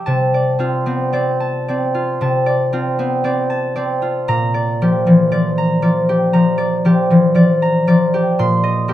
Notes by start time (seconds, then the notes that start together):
Already playing: G3 G4 E5
0.06 C3 A5
0.34 D5
0.59 C4 F4
0.86 B3 C4
1.13 C4 D5
1.40 A5
1.68 C4 D5
1.94 F4
2.21 C3 A5
2.46 D5
2.73 C4 F4
2.99 B3 C4
3.24 C4 D5
3.50 A5
3.76 C4 D5
4.02 F4
4.28 A#2 A#5
4.54 D5
4.82 F3 G4
5.06 E3 F3
5.31 F3 D5
5.58 A#5
5.82 F3 D5
6.09 G4
6.33 F3 A#5
6.58 D5
6.85 F3 G4
7.10 E3 F3
7.35 F3 D5
7.62 A#5
7.87 F3 D5
8.14 G4
8.39 A#2 C6
8.64 D#5
8.88 A#3 G4